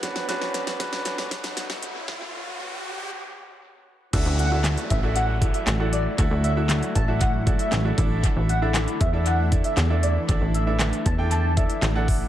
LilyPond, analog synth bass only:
\new Staff \with { instrumentName = "Analog synth bass" } { \clef bass \time 4/4 \key d \major \tempo 4 = 117 r1 | r1 | d,16 d,4~ d,16 a,,4. a,,4 | d,16 d,4~ d,16 a,,4. a,,8 a,,8~ |
a,,16 a,,4~ a,,16 e,4. e,4 | a,,16 a,,4~ a,,16 e,4. a,,4 | }